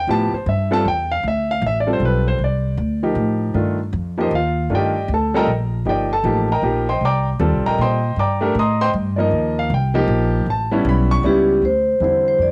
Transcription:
0.07 A2 F3 B3 E4 G4 A5
0.33 C5, muted upright bass stroke
0.46 G2 E5
0.71 G3 C4 F4 A4 A5
0.85 E2 G5
1.12 F5
1.23 D2
1.28 E5
1.51 F5
1.62 A1
1.67 E5
1.80 D5
1.87 G3 C4 F4 A4
1.93 C5
2.00 B1
2.05 B4
2.28 C5
2.38 C2
2.44 D5
2.77 D2
3.03 F3 D#4 G4 A#4
3.15 A2
3.54 G2 D#3 A3 D4 F4
3.93 F2
4.18 F3 A#3 D#4 G4 A#4 C5 D#5
4.31 D#2
4.35 F4 F5
4.70 G2 D#3 A3 D4 F4
4.75 G4 D5 D#5 G5
5.08 D2
5.14 A4 A5
5.34 G3 C4 F4 A4 A#4 D#5 G5 A#5
5.46 A#1
5.85 G1 F3 A#3 D#4 G4
5.89 G4 D5 D#5 G5
6.13 A4 A5
6.24 A1 F3 A#3 D#4 G4
6.52 A#4 D#5 G5 A#5
6.62 A#1 F3 A#3 D#4 G4
6.89 C5 D#5 G5 C6
7.01 C2
7.05 D5 G5 A#5 D6
7.39 D#2 G3 C4 F4 A4
7.53 C2
7.66 A#1 A#4 D#5 G5 A#5
7.78 A#2 G5 C6
7.82 C5 D#5
8.16 G2 D5 G5 A#5 D6
8.41 A3 D4 G4 A#4
8.55 A2
8.59 D#5 A#5 C6 D#6
8.81 C5 D#5 G5 C6
8.93 G2
9.16 F3 A#3 D#4 A#4 D5 D#5
9.31 D#2
9.59 F5
9.70 C2
9.74 G5
9.94 F3 A#3 D#4 G4
10.08 A#1
10.46 A1
10.50 A5
10.71 G3 B3 C#4 E4
10.85 B1
10.89 B5
11.11 C#6
11.23 C#2 G3 B3 C#4 E4 G4
11.62 D2 C5
12.00 E2 D3 G3 C4 E4
12.04 C5
12.28 C5
12.38 F2 D5

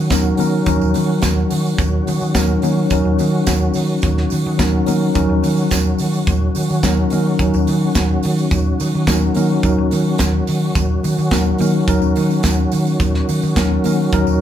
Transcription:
Already playing: D#3 F#3 C#4 D#4 F#4 A#4
0.10 D#2 F#3 C#4 D#4 A#4, kick, snare, closed hi-hat, tambourine, high conga
0.37 D#3 F#3 C#4 D#4 A#4, open hi-hat, tambourine, high conga
0.66 D#2 F3 C#4 D#4 A#4, kick, closed hi-hat, tambourine
0.73 F#3
0.81 D#2, tambourine
0.94 D#3, open hi-hat, tambourine, muted conga
1.22 D#2, kick, snare, closed hi-hat, tambourine, high conga
1.50 D#3, open hi-hat, tambourine
1.66 tambourine
1.78 D#2, kick, closed hi-hat, tambourine, muted conga
2.07 D#3, open hi-hat, tambourine, muted conga, low conga
2.21 D#3, tambourine
2.34 D#2 F#3 C#4 D#4 A#4, kick, snare, closed hi-hat, tambourine, high conga
2.62 D#3 F#3 C#4 D#4 C#5, open hi-hat, tambourine, high conga
2.90 D#2 F#3 C#4 D#4 A#4, kick, closed hi-hat, tambourine
3.05 D#2
3.19 D#3, open hi-hat, tambourine, muted conga
3.46 D#2, kick, snare, closed hi-hat, tambourine, high conga
3.74 D#3, open hi-hat, tambourine
4.02 D#2, kick, closed hi-hat, tambourine, muted conga
4.18 snare
4.30 D#3, open hi-hat, tambourine, muted conga, low conga
4.46 D#3
4.58 D#2 F#3 C#4 D#4 A#4, kick, snare, closed hi-hat, tambourine, high conga
4.86 D#3 F#3 C#4 D#4 A#4, open hi-hat, tambourine, high conga
5.14 D#2 F3 C#4 D#4 A#4, kick, closed hi-hat, tambourine
5.20 F#3
5.29 D#2
5.43 D#3, open hi-hat, tambourine, muted conga
5.57 tambourine
5.71 D#2, kick, snare, closed hi-hat, tambourine, high conga
5.98 D#3, open hi-hat, tambourine
6.14 tambourine
6.27 D#2, kick, closed hi-hat, tambourine, muted conga
6.55 D#3, open hi-hat, tambourine, low conga
6.69 D#3, tambourine
6.83 D#2 F#3 C#4 D#4 A#4, kick, snare, tambourine, high conga
7.10 D#3 F#3 C#4 D#4 A#4, open hi-hat, tambourine, high conga
7.39 D#2 F#3 C#4 D#4 F#4, kick, closed hi-hat, tambourine
7.54 D#2, tambourine
7.67 D#3, open hi-hat, tambourine, muted conga
7.95 D#2, kick, snare, tambourine, high conga
8.23 D#3, open hi-hat, tambourine
8.38 tambourine
8.51 D#2, kick, closed hi-hat, tambourine, muted conga
8.79 D#3, open hi-hat, tambourine, low conga
8.95 D#3
9.07 D#2 F#3 C#4 D#4 A#4, kick, snare, closed hi-hat, tambourine, high conga
9.34 D#3 F#3 C#4 D#4 A#4, open hi-hat, tambourine, high conga
9.63 D#2 F#3 C#4 D#4 A#4, kick, closed hi-hat, tambourine
9.78 D#2
9.91 D#3, open hi-hat, tambourine, muted conga
10.18 D#2, kick, snare, closed hi-hat, tambourine, high conga
10.47 D#3, open hi-hat, tambourine
10.75 D#2, kick, closed hi-hat, tambourine, muted conga
11.03 D#3, open hi-hat, tambourine, muted conga, low conga
11.18 D#3, tambourine
11.31 D#2 F#3 C#4 D#4 A#4, kick, snare, closed hi-hat, tambourine, high conga
11.58 D#3 F#3 C#4 D#4 A#4, open hi-hat, tambourine, high conga
11.87 D#2 F#3 C#4 D#4 A#4, kick, closed hi-hat, tambourine
12.02 D#2, tambourine
12.16 D#3, open hi-hat, tambourine, muted conga
12.30 tambourine
12.43 D#2, kick, snare, closed hi-hat, tambourine, high conga
12.72 D#3, open hi-hat, tambourine
12.87 tambourine
13.00 D#2, kick, closed hi-hat, tambourine, muted conga
13.14 snare
13.28 D#3, open hi-hat, tambourine, muted conga, low conga
13.42 D#3, tambourine
13.56 D#2 F#3 C#4 D#4 A#4, kick, snare, closed hi-hat, tambourine, high conga
13.84 D#3 F#3 C#4 D#4 A#4, open hi-hat, tambourine, high conga
14.12 D#2 F#3 C#4 D#4 A#4, kick, closed hi-hat, tambourine
14.27 D#2, tambourine

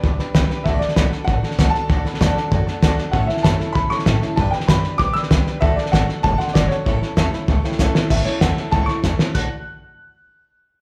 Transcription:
Already playing: D5
0.03 D2 G3 D4 G4 B4 D5 G5 B5, kick, snare
0.19 D4 G4 B4 D5 G5 B5, muted upright bass stroke, snare
0.34 C2 G3 D4 G4 B4 D5 G5 B5, kick, snare, hi-hat pedal
0.50 D4 G4 B4 D5 G5 B5, muted upright bass stroke, snare
0.64 D2 D3 A3 D4 F#4 A4 D5 E5 F#5 A5, kick, snare
0.79 A4 D5 F#5, muted upright bass stroke, snare
0.83 D4 F#4
0.88 snare
0.96 B1 D3 A3 D4 F#4 A4 D5 F#5 B5, kick, snare, hi-hat pedal
1.11 D4 F#4 A4 D5 F#5 A5, muted upright bass stroke, snare
1.24 A1 A3 D4 D5 F#5 A5, kick, snare
1.29 F#4 A4
1.43 D4 F#4 A4 D5 F#5 A5, muted upright bass stroke, snare
1.51 snare
1.58 C2 D3 A3 D4 F#4 A4 D5 F#5 A5, kick, snare, hi-hat pedal
1.70 A4 A5
1.74 D4 F#4 D5 F#5 A5, muted upright bass stroke, snare
1.89 D2 D3 A3 D4 F#4 A4 D5 F#5 A5, kick, snare
2.04 D4 F#4 A4 D5 F#5 B5, muted upright bass stroke, snare
2.14 snare
2.19 E2 D3 A3 D4 F#4 A4 D5 F#5 A5, kick, snare, hi-hat pedal
2.35 D4 F#4 A4 D5 F#5 A5, muted upright bass stroke, snare
2.51 F#2 A3 D4 F#4 A4 D5 F#5 A5, kick, snare
2.67 D4 F#4 A4 D5 F#5 A5, muted upright bass stroke, snare
2.82 D2 D3 A3 D4 F#4 A4 D5 F#5 A5, kick, snare, hi-hat pedal
2.98 D4 F#4 A4 D5 F#5 A5, muted upright bass stroke, snare
3.11 A2 E3 A3 C#4 E4 A4 C#5 E5 F#5 A5, kick, snare
3.27 A3 C#4 E4 A4 C#5 E5 A5, muted upright bass stroke, snare
3.37 snare
3.43 F#2 A2 E3 A3 C#4 E4 A4 C#5 E5 A5 B5, kick, snare, hi-hat pedal
3.59 A3 C#4 E4 A4 C#5 E5 A5, muted upright bass stroke, snare
3.73 G2 A3 C#4 C#5 E5 B5, kick, snare
3.77 E4 A4
3.90 A3 C#4 E4 A4 C#5 E5 A5 C#6, muted upright bass stroke, snare
3.99 snare
4.05 A2 E3 A3 C#4 E4 A4 C#5 E5 A5, kick, snare, hi-hat pedal
4.21 A3 C#4 E4 A4 C#5 E5 A5, muted upright bass stroke, snare
4.36 G2 G3 D4 G4 B4 D5 G5 A5 B5, kick, snare
4.51 G4 B4 D5 G5 B5, muted upright bass stroke, snare
4.56 D4
4.60 snare
4.68 F#2 G3 D4 G4 B4 D5 G5 B5, kick, snare, hi-hat pedal
4.84 D4 G4 B4 D5 G5 B5, muted upright bass stroke, snare
4.98 B1 G3 D4 G4 D5 G5 D6, kick, snare
5.02 B4
5.13 D4 G4 B4 D5 G5 B5 E6, muted upright bass stroke, snare
5.23 snare
5.30 C2 G3 D4 G4 B4 D5 G5 B5, kick, snare, hi-hat pedal
5.45 D4 G4 B4 D5 G5 B5, muted upright bass stroke, snare
5.61 D2 D3 A3 D4 F#4 A4 D5 E5 F#5 A5, kick, snare
5.76 D4 F#4 A4 D5, muted upright bass stroke, snare
5.86 snare
5.92 A1 D3 A3 D4 F#4 A4 D5 F#5 A5, kick, snare, hi-hat pedal
6.07 D4 F#4 A4 D5 A5, muted upright bass stroke, snare
6.23 F#1 A3 D4 F#4 A4 F#5 A5, kick, snare
6.38 D4 F#4 A4 D5 F#5 C6, muted upright bass stroke, snare
6.48 snare
6.53 G1 D3 A3 D4 F#4 A4 D5 F#5 A5, kick, snare, hi-hat pedal
6.68 F#4 A4 C#5 F#5 A5, muted upright bass stroke, snare
6.72 D4
6.86 A1 A2 E3 A3 C#4 E4 A4 C#5 E5 A5, kick, snare
7.01 A3 C#4 E4 A4 C#5 E5 A5, muted upright bass stroke, snare
7.16 E2 A2 E3 A3 C#4 E4 A4 C#5 E5 A5, kick, snare, hi-hat pedal
7.32 A3 C#4 E4 A4 C#5 E5 B5, muted upright bass stroke, snare
7.48 C#2 A3 C#4 E4 A4 C#5 E5 A5, kick, snare
7.63 A3 C#4 E4 A4 C#5 E5 G5, muted upright bass stroke, snare
7.72 snare
7.79 B1 A2 E3 A3 C#4 E4 A4 C#5 E5 A5, kick, snare, hi-hat pedal
7.94 A3 C#4 E4 A4 C#5 E5 A5, muted upright bass stroke, snare
8.10 A1 A2 E3 A3 C#4 E4 A4 C#5 E5 A5, kick, snare, crash
8.25 A3 C#4 E4 A4 C#5 E5, muted upright bass stroke, snare
8.41 E2 A3 C#4 E4 A4 C#5 E5 F#5 A5, kick, snare, hi-hat pedal
8.57 A3 C#4 E4 A4 C#5 E5 A5, muted upright bass stroke, snare
8.71 C#2 A2 E3 A3 C#4 E4 A4 C#5 E5 A5, kick, snare
8.86 C#4 E4 A4 C#5 E5 A5 C#6, muted upright bass stroke, snare
8.90 A3
9.04 E2 A3 C#4 E4 A4 C#5 E5 A5, kick, snare, hi-hat pedal
9.19 A3 C#4 E4 A4 C#5 E5 A5, muted upright bass stroke, snare
9.35 D2 D3 A3 D4 F#4 A4 D5 F#5 A5 F#6, kick, crash

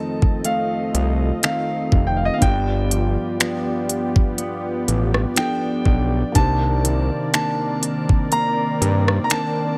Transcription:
Already playing: F2 D#3 A3 C4 D#4 F4 A4 D#5 A5
0.22 kick
0.45 A3 F5, closed hi-hat
0.94 C2, closed hi-hat
1.43 D#3 A3 C4 F5, finger snap, closed hi-hat
1.92 F1, kick
2.07 G5
2.17 F5
2.25 D#5
2.34 F5
2.38 G1 G2 B3 D4 F4 G4 D5 G5, kick, closed hi-hat
2.42 D4 G4 D5
2.91 F3, closed hi-hat
3.40 F3 B3 D4, finger snap, closed hi-hat
3.89 closed hi-hat
4.16 kick
4.38 B3, closed hi-hat
4.88 A1, closed hi-hat
5.14 cross-stick
5.35 F3 B3 D4 F4 G4 A4 G5, finger snap, closed hi-hat
5.86 B1, kick
6.32 C2 C3 D#3 A#3 C4 D4 D#4 A#4 A5, kick, closed hi-hat
6.38 G4 C5
6.85 D#3, closed hi-hat
7.34 D#3 A#3 D4 A5, finger snap, closed hi-hat
7.83 closed hi-hat
8.09 kick
8.32 A#3 A#5, closed hi-hat
8.81 G2, closed hi-hat
9.08 cross-stick
9.24 A#5
9.30 D#3 A#3 D4 A5, finger snap, closed hi-hat

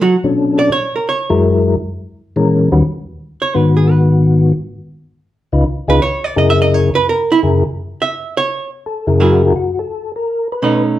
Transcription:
0.01 F#3 F#4
0.24 B2 F#3 C#4 D4 A4
0.59 D5
0.72 C#5
0.96 A#4
1.09 C#5
1.30 F#2 F#3 G#3 E4 A#4
2.36 A#2 E3 G#3 C#4 A#4
2.71 D#2 D#3 G3 C#4 F#4 B4
3.42 C#5
3.54 G#2 D#3 B3 F#4 B4
3.77 G#4
3.91 B4
5.52 C#2 C#3 D#4 F4 B4
5.88 C#2 C#3 D#4 F4 G#4 B4
6.02 C#5
6.24 D5
6.36 F#2 C#3 E4 G#4 A#4 D#5
6.50 E5
6.62 D#5
6.74 C#5
6.95 B4
7.09 A#4
7.32 E4
7.43 F#2 C#3 E4 G#4 A#4
8.02 E5
8.37 C#5
8.86 A4
9.07 F#2 C#3 E4 G#4 A#4
9.20 F#3 A#3 E4 F#4 G#4
9.45 F#4
9.56 F#4
9.79 A4
10.16 A#4
10.52 B4
10.62 B2 A3 C#4 D#4

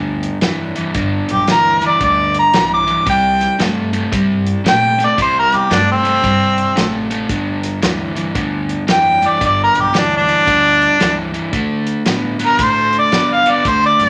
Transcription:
Already playing: D2 G2 D3
0.23 closed hi-hat
0.41 F2 G2 E3, snare, closed hi-hat
0.75 G2 E3, closed hi-hat
0.94 G1 G2 D3, kick, closed hi-hat
1.29 B1 G4, closed hi-hat
1.47 D2 G2 E3, snare, closed hi-hat
1.51 A#4
1.82 G2 E3, closed hi-hat
1.86 D5
2.01 D2 G2 D3 D5, kick, closed hi-hat
2.34 closed hi-hat
2.39 A#5
2.53 B1 G2 E3, snare, closed hi-hat
2.74 D6
2.87 G2 E3, closed hi-hat
3.06 C2 C3 G3, kick, closed hi-hat
3.10 G5
3.41 snare, closed hi-hat
3.59 G2 C3 A3, snare, closed hi-hat
3.93 C3 A3, closed hi-hat
4.12 G2 C3 G3, kick, closed hi-hat
4.47 closed hi-hat
4.64 A#2 C3 A3, snare, closed hi-hat
4.69 G5
4.98 C3 A3, snare, closed hi-hat
5.04 D5
5.18 C2 C3 G3, kick, closed hi-hat
5.22 C5
5.39 A#4
5.52 E2, snare, closed hi-hat
5.56 G4
5.70 G2 C3 A3 D4, snare, closed hi-hat
5.92 C4
6.03 C3 A3, closed hi-hat
6.23 G2 C3 G3, kick, closed hi-hat
6.58 closed hi-hat
6.76 A1 C3 A3, snare, closed hi-hat
7.10 C3 A3, closed hi-hat
7.29 G1 G2 D3, kick, closed hi-hat
7.63 snare, closed hi-hat
7.82 D2 G2 E3, snare, closed hi-hat
8.15 G2 E3, closed hi-hat
8.35 D2 G2 D3, kick, closed hi-hat
8.69 closed hi-hat
8.87 F2 G2 E3, snare, closed hi-hat
8.92 G5
9.22 G2 E3, closed hi-hat
9.28 D5
9.40 G1 G2 D3, kick, closed hi-hat
9.45 D5
9.63 A#4
9.75 B1, closed hi-hat
9.80 G4
9.93 D2 G2 E3, snare, closed hi-hat
9.99 D4
10.17 D4
10.27 G2 E3, closed hi-hat
10.46 D2 G2 D3, kick, closed hi-hat
10.82 closed hi-hat
11.00 C#2 G2 E3, snare, closed hi-hat
11.33 G2 E3, closed hi-hat
11.53 D2 D3 A3, kick, closed hi-hat
11.87 closed hi-hat
12.06 A2 D3 B3, snare, closed hi-hat
12.39 D3 B3, closed hi-hat
12.46 A#4
12.59 A2 D3 A3 C5, kick, closed hi-hat
12.93 closed hi-hat
12.98 D5
13.12 C3 D3 B3, snare, closed hi-hat
13.33 F5
13.46 D3 B3, closed hi-hat
13.50 D5
13.65 D2 D3 A3 C5, kick, closed hi-hat
13.86 D5
13.99 F#2, snare, closed hi-hat

